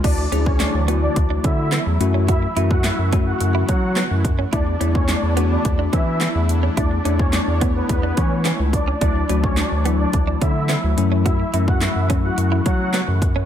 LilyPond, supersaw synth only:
\new Staff \with { instrumentName = "Supersaw synth" } { \time 4/4 \key d \lydian \tempo 4 = 107 <d' d''>16 r8 <cis' cis''>16 <d' d''>16 r8 <d' d''>16 r8 <e' e''>8 r4 | <e' e''>16 r8 <fis' fis''>16 <e' e''>16 r8 <fis' fis''>16 r8 <fis' fis''>8 r4 | <d' d''>16 r8 <cis' cis''>16 <d' d''>16 r8 <d' d''>16 r8 <e' e''>8 r4 | <d' d''>16 r8 <cis' cis''>16 <d' d''>16 r8 <b b'>16 <b b'>8 <cis' cis''>16 r8. <d' d''>16 r16 |
<d' d''>16 r8 <cis' cis''>16 <d' d''>16 r8 <d' d''>16 r8 <e' e''>8 r4 | <e' e''>16 r8 <fis' fis''>16 <e' e''>16 r8 <fis' fis''>16 r8 <fis' fis''>8 r4 | }